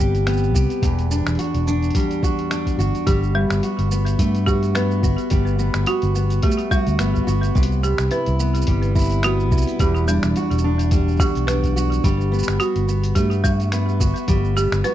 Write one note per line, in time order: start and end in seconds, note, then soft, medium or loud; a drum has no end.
0.00 0.54 G1 medium
0.00 0.83 C3 medium
0.00 1.42 G3 medium
0.00 0.26 B3 medium
0.00 0.54 G4 medium
0.00 shaker medium
0.15 closed hi-hat soft
0.15 shaker soft
0.26 1.11 B3 medium
0.26 finger snap medium
0.26 closed hi-hat medium
0.26 shaker soft
0.33 shaker soft
0.37 shaker soft
0.43 shaker soft
0.54 0.66 C2 medium
0.54 1.38 G4 medium
0.54 kick medium
0.54 shaker medium
0.70 closed hi-hat soft
0.70 shaker soft
0.82 1.20 E1 medium
0.82 3.07 E2 medium
0.82 kick loud
0.82 closed hi-hat medium
0.82 shaker soft
0.99 closed hi-hat soft
0.99 shaker soft
1.11 1.67 D4 medium
1.11 shaker medium
1.26 1.36 E1 medium
1.26 finger snap medium
1.26 closed hi-hat soft
1.26 shaker soft
1.35 2.23 F#4 medium
1.35 closed hi-hat soft
1.39 closed hi-hat medium
1.39 shaker soft
1.44 closed hi-hat soft
1.54 1.90 E1 medium
1.54 closed hi-hat soft
1.54 shaker soft
1.67 2.51 D4 medium
1.67 shaker medium
1.82 closed hi-hat soft
1.82 shaker soft
1.90 closed hi-hat soft
1.95 3.07 G3 medium
1.95 kick medium
1.95 closed hi-hat medium
1.95 shaker soft
2.00 closed hi-hat soft
2.11 closed hi-hat soft
2.11 shaker soft
2.23 2.78 F#4 medium
2.23 kick medium
2.23 shaker medium
2.39 closed hi-hat soft
2.51 3.35 D4 medium
2.51 finger snap medium
2.51 closed hi-hat medium
2.51 shaker soft
2.66 kick medium
2.66 closed hi-hat soft
2.66 shaker soft
2.78 2.90 G1 medium
2.78 3.62 F#4 medium
2.78 shaker medium
2.95 closed hi-hat soft
2.95 shaker soft
3.07 3.45 G1 medium
3.07 5.30 G3 medium
3.07 3.24 G4 medium
3.07 kick loud
3.07 closed hi-hat medium
3.07 shaker soft
3.23 shaker soft
3.35 3.62 G3 medium
3.35 3.91 B3 medium
3.50 3.60 G1 medium
3.50 finger snap medium
3.50 shaker soft
3.63 4.46 F#4 medium
3.63 closed hi-hat medium
3.63 shaker soft
3.79 4.14 G1 medium
3.79 closed hi-hat soft
3.79 shaker soft
3.91 4.75 B3 medium
3.91 shaker medium
4.06 closed hi-hat soft
4.06 shaker soft
4.19 5.04 G2 loud
4.19 6.42 A3 medium
4.19 kick medium
4.19 closed hi-hat medium
4.19 shaker soft
4.35 closed hi-hat soft
4.35 shaker soft
4.46 5.02 F#4 medium
4.46 4.74 G4 medium
4.46 kick medium
4.46 shaker medium
4.63 closed hi-hat soft
4.63 shaker soft
4.75 5.58 B3 medium
4.75 5.02 B4 medium
4.75 finger snap medium
4.75 closed hi-hat medium
4.75 shaker soft
4.91 shaker soft
5.03 5.15 G1 medium
5.03 5.86 F#4 medium
5.03 kick medium
5.03 shaker medium
5.18 closed hi-hat soft
5.18 shaker soft
5.30 5.69 G1 medium
5.30 8.68 G3 medium
5.30 kick loud
5.30 closed hi-hat medium
5.30 shaker soft
5.47 shaker soft
5.59 6.15 B3 medium
5.59 shaker medium
5.74 5.84 G1 medium
5.74 finger snap medium
5.74 shaker soft
5.86 6.70 F#4 medium
5.86 6.14 F#4 medium
5.86 closed hi-hat medium
5.86 shaker soft
6.02 6.39 G1 medium
6.02 closed hi-hat soft
6.02 shaker soft
6.15 6.99 B3 medium
6.15 shaker medium
6.30 closed hi-hat soft
6.30 shaker soft
6.42 7.62 A3 medium
6.42 6.61 G4 medium
6.42 kick loud
6.42 closed hi-hat medium
6.51 shaker soft
6.58 closed hi-hat soft
6.58 shaker soft
6.71 6.98 G3 loud
6.71 7.26 F#4 medium
6.71 kick loud
6.71 shaker medium
6.87 6.96 D2 medium
6.87 closed hi-hat soft
6.87 shaker soft
6.99 7.21 G1 medium
6.99 7.83 B3 medium
6.99 finger snap medium
6.99 closed hi-hat medium
6.99 shaker soft
7.15 kick medium
7.15 shaker soft
7.27 7.49 G1 medium
7.27 7.61 F#4 medium
7.27 shaker medium
7.43 closed hi-hat soft
7.43 shaker soft
7.55 7.93 C2 loud
7.55 9.80 C3 medium
7.55 kick loud
7.55 shaker soft
7.63 closed hi-hat medium
7.71 shaker soft
7.83 8.39 B3 medium
7.83 8.10 G4 medium
7.83 shaker medium
7.98 8.08 C2 medium
7.98 finger snap medium
7.98 shaker soft
8.11 8.95 E4 medium
8.11 8.38 B4 medium
8.11 closed hi-hat medium
8.11 shaker soft
8.26 8.63 C2 medium
8.26 closed hi-hat soft
8.26 shaker soft
8.39 9.23 B3 medium
8.39 shaker medium
8.55 closed hi-hat soft
8.55 shaker soft
8.61 shaker soft
8.67 9.52 G1 medium
8.67 10.39 G3 medium
8.67 kick medium
8.67 closed hi-hat medium
8.83 closed hi-hat soft
8.83 shaker soft
8.95 9.51 E4 medium
8.95 kick loud
8.95 shaker medium
8.98 shaker medium
9.01 shaker soft
9.03 shaker soft
9.05 shaker soft
9.09 closed hi-hat soft
9.09 shaker soft
9.11 shaker soft
9.23 10.08 B3 medium
9.23 9.51 F#4 medium
9.23 finger snap medium
9.23 closed hi-hat medium
9.23 shaker soft
9.40 shaker soft
9.52 9.64 C2 medium
9.52 10.11 E4 medium
9.52 kick loud
9.52 shaker medium
9.57 shaker medium
9.62 shaker soft
9.67 closed hi-hat soft
9.67 shaker soft
9.79 10.17 E1 medium
9.79 12.04 E2 medium
9.79 9.97 G4 medium
9.79 kick loud
9.79 closed hi-hat medium
9.79 shaker soft
9.96 shaker soft
10.08 10.35 G3 medium
10.08 10.64 D4 medium
10.08 shaker medium
10.23 10.33 E1 medium
10.23 finger snap medium
10.23 closed hi-hat soft
10.23 shaker soft
10.36 11.20 F#4 medium
10.36 closed hi-hat medium
10.36 shaker soft
10.51 11.19 E1 medium
10.51 closed hi-hat soft
10.51 shaker soft
10.58 shaker medium
10.64 11.48 D4 medium
10.79 closed hi-hat soft
10.79 shaker soft
10.91 12.04 G3 medium
10.91 kick loud
10.91 closed hi-hat medium
10.91 shaker soft
11.08 shaker soft
11.11 shaker soft
11.16 11.32 D2 medium
11.16 11.47 G4 medium
11.16 kick loud
11.16 shaker soft
11.20 11.76 F#4 medium
11.20 shaker medium
11.30 shaker soft
11.35 11.99 B1 loud
11.35 closed hi-hat soft
11.35 shaker soft
11.47 12.31 D4 medium
11.47 11.74 B4 medium
11.47 finger snap medium
11.47 closed hi-hat medium
11.47 shaker soft
11.63 kick medium
11.63 closed hi-hat soft
11.63 shaker soft
11.76 12.59 F#4 medium
11.76 shaker medium
11.92 closed hi-hat soft
11.92 shaker soft
12.04 12.42 G1 medium
12.04 14.28 G3 medium
12.04 kick loud
12.04 closed hi-hat medium
12.04 shaker soft
12.21 shaker soft
12.32 12.88 B3 medium
12.32 shaker soft
12.39 shaker soft
12.43 shaker medium
12.48 12.57 G1 medium
12.48 finger snap medium
12.48 shaker soft
12.60 13.43 F#4 medium
12.60 12.87 F#4 medium
12.60 closed hi-hat medium
12.60 shaker soft
12.76 13.11 G1 medium
12.76 closed hi-hat soft
12.76 shaker soft
12.88 13.72 B3 medium
12.88 shaker medium
13.04 closed hi-hat soft
13.04 shaker soft
13.15 14.02 G2 loud
13.15 14.94 A3 medium
13.15 13.33 G4 medium
13.15 kick medium
13.15 closed hi-hat medium
13.15 shaker soft
13.31 closed hi-hat soft
13.31 shaker soft
13.44 13.71 G3 medium
13.44 13.99 F#4 medium
13.44 kick loud
13.44 shaker medium
13.60 closed hi-hat soft
13.60 shaker soft
13.72 14.56 B3 medium
13.72 finger snap medium
13.72 closed hi-hat medium
13.72 shaker soft
13.89 shaker soft
14.00 14.12 G1 medium
14.00 14.83 F#4 medium
14.00 kick loud
14.00 shaker medium
14.16 closed hi-hat soft
14.16 shaker soft
14.28 14.66 G1 loud
14.28 14.94 G3 medium
14.28 kick loud
14.28 closed hi-hat medium
14.28 shaker soft
14.45 shaker soft
14.56 14.94 B3 medium
14.56 14.83 G4 medium
14.56 shaker medium
14.72 14.81 G1 medium
14.72 finger snap medium
14.72 shaker soft
14.84 14.94 F#4 medium
14.84 14.94 B4 medium
14.84 closed hi-hat medium
14.84 shaker soft